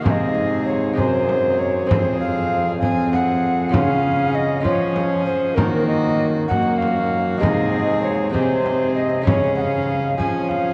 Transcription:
0.02 0.94 C3 soft
0.02 0.92 G#3 soft
0.02 0.96 C4 medium
0.02 0.94 G#4 soft
0.02 0.11 F5 medium
0.02 frame drum medium
0.06 0.94 G#2 medium
0.06 0.99 G#2 medium
0.06 0.96 G#4 medium
0.10 0.65 D#5 medium
0.66 0.96 C#5 medium
0.94 1.86 F#2 medium
0.94 1.86 C3 soft
0.94 1.85 G#3 soft
0.94 1.88 C4 medium
0.94 1.87 G#4 soft
0.94 1.88 G#4 medium
0.98 1.90 F#2 medium
0.98 1.60 C5 medium
0.98 frame drum soft
1.29 frame drum soft
1.59 1.90 C#5 medium
1.86 3.69 F2 soft
1.86 3.68 G#3 soft
1.86 3.68 C4 soft
1.86 2.79 C4 medium
1.86 2.79 G#4 medium
1.86 3.69 G#4 soft
1.86 2.20 C5 medium
1.91 3.70 F2 medium
1.91 frame drum medium
2.20 2.80 F5 medium
2.81 3.75 C4 medium
2.81 3.72 G#4 medium
2.81 3.12 G#5 medium
2.81 frame drum soft
3.13 3.74 F#5 medium
3.13 frame drum soft
3.69 4.59 G#3 soft
3.69 4.60 C#4 soft
3.69 4.61 F4 soft
3.69 4.36 F5 loud
3.73 4.61 C#3 medium
3.73 4.66 C#3 medium
3.73 4.63 C#4 medium
3.73 4.63 G#4 medium
3.73 frame drum medium
4.35 4.65 D#5 medium
4.60 5.25 F3 medium
4.60 5.52 G#3 soft
4.60 5.53 C#4 soft
4.60 5.59 C#4 medium
4.60 5.53 F4 soft
4.65 5.29 F3 medium
4.65 5.58 G#4 medium
4.65 5.25 C#5 medium
4.65 frame drum medium
4.96 frame drum soft
5.26 5.56 C5 medium
5.55 6.45 D#3 medium
5.55 6.46 D#3 medium
5.55 7.37 A#3 medium
5.55 6.49 A#3 medium
5.55 6.49 F#4 medium
5.55 5.86 A#4 medium
5.55 7.37 A#4 medium
5.55 frame drum medium
5.87 6.27 D#5 medium
6.48 7.43 F#2 medium
6.48 7.38 F#2 medium
6.48 7.40 A#3 medium
6.48 7.43 F#4 medium
6.48 6.80 F#5 loud
6.48 frame drum medium
6.78 7.39 F5 medium
6.82 frame drum soft
7.38 8.30 C3 soft
7.38 8.28 G#3 soft
7.38 8.31 C4 medium
7.38 8.30 G#4 soft
7.38 8.33 G#4 medium
7.38 8.00 D#5 medium
7.42 8.35 G#2 medium
7.42 8.30 G#2 medium
7.42 frame drum medium
8.02 8.32 C#5 medium
8.30 9.22 C3 medium
8.30 9.20 G#3 soft
8.30 9.22 C4 soft
8.30 9.28 C4 medium
8.30 9.22 G#4 soft
8.30 9.24 G#4 medium
8.30 8.93 C5 medium
8.34 9.27 C3 medium
8.34 frame drum medium
8.66 frame drum soft
8.95 9.25 D#5 medium
9.22 10.14 C#3 medium
9.22 10.73 G#3 soft
9.22 10.73 C#4 soft
9.22 10.73 G#4 soft
9.26 10.18 C#3 medium
9.26 10.18 C#4 medium
9.26 10.17 G#4 medium
9.26 9.56 C#5 medium
9.26 frame drum medium
9.56 9.62 F#5 medium
9.61 10.17 F5 loud
10.18 10.73 F3 soft
10.18 10.73 F3 medium
10.18 10.73 C#4 medium
10.18 10.73 G#4 medium
10.18 10.51 G#5 medium
10.18 frame drum soft
10.49 10.73 F5 medium
10.49 frame drum soft

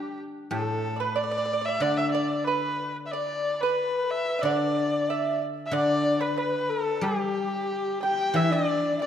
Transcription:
0.00 1.17 G3 soft
0.00 0.85 D4 soft
0.00 0.17 G4 medium
0.00 0.19 G4 medium
0.51 1.82 A2 medium
0.51 0.93 A4 medium
0.51 1.02 A4 medium
0.96 1.15 B4 medium
0.96 1.00 D5 soft
1.01 1.20 B4 medium
1.16 1.22 D5 medium
1.16 1.67 D5 medium
1.24 1.30 D5 soft
1.31 1.36 D5 medium
1.38 1.44 D5 medium
1.45 1.52 D5 medium
1.53 1.60 D5 soft
1.61 1.67 D5 medium
1.61 1.82 E5 medium
1.68 1.76 D5 soft
1.80 3.79 D3 medium
1.80 1.98 D5 medium
1.97 2.11 E5 medium
1.97 2.14 E5 medium
2.11 2.39 D5 medium
2.11 2.45 D5 medium
2.39 2.46 D5 medium
2.44 2.96 B4 medium
2.44 2.94 B4 medium
3.06 3.12 E5 medium
3.06 3.15 E5 soft
3.11 3.62 D5 medium
3.11 3.60 D5 medium
3.11 3.62 D5 medium
3.60 4.12 B4 medium
3.60 4.45 B4 medium
3.60 4.08 B4 medium
4.08 4.34 A4 medium
4.08 4.43 E5 medium
4.39 5.70 D3 medium
4.39 5.40 D5 medium
4.39 4.45 E5 soft
4.44 4.53 D5 medium
4.44 5.06 D5 medium
4.51 4.60 B4 medium
4.59 5.11 D5 medium
5.09 5.41 E5 medium
5.09 5.40 E5 medium
5.66 5.75 E5 medium
5.71 7.68 D3 medium
5.71 6.40 D5 medium
5.71 6.23 D5 loud
5.71 6.18 D5 medium
6.21 6.36 B4 medium
6.21 6.38 B4 medium
6.38 6.99 B4 medium
6.38 6.71 B4 medium
6.69 7.04 A4 medium
7.01 9.01 G3 medium
7.01 8.02 G4 medium
7.01 7.10 G4 medium
7.01 7.99 G4 medium
7.08 7.17 A4 soft
7.16 8.02 G4 medium
8.02 8.38 G4 medium
8.02 8.36 G5 medium
8.02 8.37 G5 medium
8.02 8.34 G5 medium
8.34 9.06 E3 medium
8.34 8.53 E4 medium
8.34 8.53 E5 medium
8.34 8.51 E5 medium
8.51 9.02 D4 medium
8.51 8.97 D5 medium
8.51 9.01 D5 medium
8.51 8.99 D5 medium
8.98 9.06 D5 medium
8.98 9.02 E5 medium
9.02 9.06 D4 medium
9.02 9.06 D5 medium

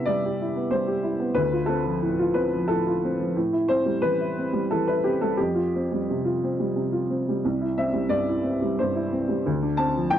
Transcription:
0.00 1.33 C3 soft
0.00 0.15 B3 soft
0.00 0.41 E4 soft
0.00 0.25 G4 soft
0.00 1.40 E5 medium
0.05 0.32 G3 soft
0.05 0.71 D5 medium
0.25 0.49 G4 soft
0.41 0.66 E4 soft
0.56 0.81 B3 soft
0.71 0.97 G3 soft
0.71 1.37 C5 medium
0.87 1.14 G4 soft
1.03 1.30 E4 soft
1.19 1.36 B3 soft
1.34 3.31 D2 soft
1.34 1.69 B4 medium
1.53 1.79 F4 soft
1.66 1.96 C4 soft
1.66 2.34 A4 medium
1.85 2.12 F3 soft
2.02 2.29 A2 soft
2.19 2.46 F4 soft
2.34 2.62 C4 soft
2.34 2.68 B4 medium
2.54 2.79 F3 soft
2.68 2.95 A2 soft
2.68 3.34 A4 medium
2.86 3.12 F4 soft
3.04 3.30 C4 soft
3.19 3.35 F3 soft
3.36 5.34 A2 soft
3.53 3.79 E4 soft
3.68 3.95 C4 soft
3.68 4.02 C5 medium
3.85 4.12 G3 soft
4.02 4.29 E3 soft
4.02 4.69 B4 medium
4.20 4.46 E4 soft
4.38 4.63 C4 soft
4.53 4.79 G3 soft
4.71 4.98 E3 soft
4.71 4.87 A4 medium
4.88 5.15 E4 soft
4.88 5.04 B4 medium
5.04 5.32 C4 soft
5.04 5.20 G4 medium
5.21 5.38 G3 soft
5.21 5.38 A4 medium
5.37 7.41 F2 soft
5.37 7.09 G4 medium
5.55 5.82 F4 soft
5.75 6.01 C4 soft
5.92 6.18 G3 soft
6.10 6.36 C3 soft
6.25 6.52 F4 soft
6.44 6.70 C4 soft
6.60 6.86 G3 soft
6.76 7.03 C3 soft
6.92 7.20 F4 soft
7.10 7.37 C4 soft
7.29 7.45 G3 soft
7.45 9.42 C2 soft
7.61 7.88 E4 soft
7.78 8.05 C4 soft
7.78 8.12 E5 medium
7.93 8.21 G3 soft
8.09 8.38 G2 soft
8.09 8.78 D5 medium
8.28 8.55 E4 soft
8.44 8.71 C4 soft
8.62 8.89 G3 soft
8.79 9.06 G2 soft
8.79 9.45 C5 medium
8.96 9.22 E4 soft
9.12 9.39 C4 soft
9.28 9.45 G3 soft
9.46 10.19 D2 medium
9.62 9.89 D4 soft
9.77 10.05 C4 soft
9.77 10.11 A5 medium
9.96 10.19 F3 soft
10.10 10.19 A2 soft
10.10 10.19 G5 medium

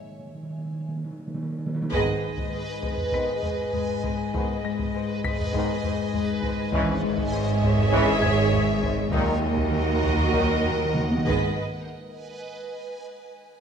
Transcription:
0.03 0.11 D#3 soft
0.12 0.18 D#3 soft
0.19 0.25 D#3 medium
0.26 0.33 D#3 soft
0.35 0.42 D#3 medium
0.43 0.49 D#3 medium
0.50 0.56 D#3 medium
0.58 0.63 D#3 medium
0.65 0.71 D#3 medium
0.72 0.79 D#3 medium
0.80 0.87 D#3 medium
0.88 0.95 D#3 medium
0.96 1.03 D#3 medium
1.05 1.10 D#3 medium
1.11 1.17 D#3 medium
1.19 1.26 D#3 medium
1.27 1.33 D#3 medium
1.34 1.41 D#3 medium
1.43 1.49 D#3 medium
1.51 1.57 D#3 medium
1.58 1.65 D#3 medium
1.66 1.73 D#3 loud
1.75 1.81 D#3 loud
1.82 1.90 D#3 loud
1.92 6.69 G#1 medium
1.92 2.79 G#2 medium
1.92 6.68 G#2 medium
1.92 2.21 G#2 medium
1.92 2.52 G#2 medium
1.92 2.22 D#3 medium
1.92 2.21 G#3 medium
1.92 2.21 B3 medium
1.92 6.68 G#4 medium
1.92 6.68 B4 medium
1.92 6.69 B4 loud
1.92 6.68 D#5 medium
1.92 6.69 D#5 medium
1.92 6.69 G#5 medium
1.92 taiko medium
2.22 3.72 G#3 soft
2.37 taiko medium
2.53 2.81 G#2 medium
2.82 3.12 G#2 soft
2.82 taiko medium
2.98 taiko low medium
3.12 3.42 G#2 medium
3.12 3.34 G#2 medium
3.12 3.35 D#3 medium
3.12 3.34 G#3 medium
3.12 3.34 B3 medium
3.12 4.90 B5 soft
3.12 4.91 B6 soft
3.12 taiko medium
3.43 4.03 G#2 medium
3.43 taiko low medium
3.73 4.63 G#3 medium
3.73 taiko low medium
4.04 4.33 G#2 medium
4.04 taiko medium
4.34 4.93 G#2 medium
4.34 4.55 G#2 medium
4.34 4.56 D#3 medium
4.34 4.56 G#3 medium
4.34 4.56 B3 medium
4.34 taiko medium
4.64 6.13 G#3 medium
4.64 6.39 A#6 medium
4.79 taiko medium
4.94 5.23 G#2 medium
5.24 5.53 G#2 medium
5.24 6.99 B6 medium
5.24 taiko medium
5.39 taiko low medium
5.53 5.83 G#2 loud
5.53 5.75 G#2 medium
5.53 5.75 D#3 medium
5.53 5.74 G#3 medium
5.53 5.74 B3 medium
5.53 taiko medium
5.83 6.42 G#2 medium
5.83 taiko low medium
6.14 7.01 G#3 medium
6.14 taiko low medium
6.42 6.72 G#2 medium
6.42 taiko medium
6.72 9.09 G#1 loud
6.72 9.08 G#2 loud
6.72 6.94 G#2 loud
6.72 7.58 G#2 loud
6.72 7.31 G#2 loud
6.72 6.94 E3 loud
6.72 6.93 G#3 loud
6.72 6.94 C#4 loud
6.72 9.09 G#4 loud
6.72 9.13 C#5 medium
6.72 9.09 C#5 loud
6.72 9.12 E5 medium
6.72 9.09 E5 loud
6.72 9.08 G#5 medium
6.72 taiko loud
7.02 8.51 G#3 medium
7.17 taiko medium
7.32 7.62 G#2 medium
7.63 7.91 G#2 medium
7.63 taiko loud
7.77 taiko low medium
7.91 8.21 G#2 loud
7.91 8.14 G#2 loud
7.91 8.13 E3 loud
7.91 8.13 G#3 loud
7.91 8.13 C#4 loud
7.91 taiko loud
8.21 8.82 G#2 medium
8.21 9.99 G#5 medium
8.21 9.99 G#6 medium
8.21 taiko low medium
8.52 9.15 G#3 medium
8.52 taiko low medium
8.83 9.15 G#2 medium
8.83 taiko medium
9.11 11.22 D#2 loud
9.11 11.23 D#2 loud
9.11 9.34 A#2 loud
9.11 9.71 D#3 loud
9.11 9.34 D#3 loud
9.11 9.34 F#3 loud
9.11 9.33 D#4 loud
9.11 11.23 F#4 loud
9.11 11.23 A#4 loud
9.11 11.27 A#4 medium
9.11 11.25 D#5 medium
9.11 11.23 D#5 loud
9.11 11.26 F#5 medium
9.11 taiko loud
9.35 9.41 D#3 soft
9.42 10.94 D#4 medium
9.57 9.63 D#3 medium
9.57 taiko medium
9.64 9.70 D#3 medium
9.71 9.78 D#3 medium
9.71 10.02 D#3 medium
9.79 9.85 D#3 medium
9.86 9.93 D#3 medium
9.94 10.00 D#3 medium
10.01 10.07 D#3 medium
10.01 10.33 D#3 medium
10.01 taiko medium
10.09 10.15 D#3 medium
10.16 10.23 D#3 medium
10.16 taiko low medium
10.24 10.31 D#3 medium
10.32 10.56 A#2 medium
10.32 10.39 D#3 medium
10.32 10.63 D#3 medium
10.32 10.55 D#3 medium
10.32 10.54 F#3 medium
10.32 10.54 D#4 medium
10.32 taiko loud
10.40 10.46 D#3 medium
10.48 10.54 D#3 medium
10.55 10.61 D#3 medium
10.62 10.69 D#3 medium
10.62 11.27 D#3 medium
10.62 taiko low medium
10.70 10.77 D#3 medium
10.78 10.84 D#3 medium
10.85 10.92 D#3 medium
10.94 11.00 D#3 medium
10.94 11.27 D#4 medium
10.94 taiko mid medium
11.01 11.07 D#3 medium
11.09 11.16 D#3 medium
11.09 taiko high medium
11.18 11.24 D#3 loud
11.25 11.62 G#1 medium
11.25 11.56 G#2 loud
11.25 11.61 G#2 medium
11.25 11.54 G#2 medium
11.25 11.27 D#3 medium
11.25 11.54 D#3 medium
11.25 11.52 G#3 medium
11.25 11.52 B3 medium
11.25 11.61 G#4 medium
11.25 11.61 B4 medium
11.25 11.62 D#5 medium
11.25 taiko medium

